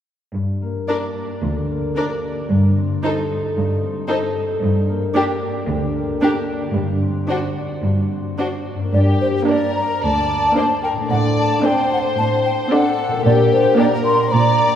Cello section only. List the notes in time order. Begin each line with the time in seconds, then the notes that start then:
0.35 G2
1.43 D2
2.51 G2
3.57 G2
4.62 G2
5.68 D2
6.75 G2
7.83 G2
8.94 G2
10.03 D2
11.10 A2
12.18 A2
13.25 A#2
14.32 A#2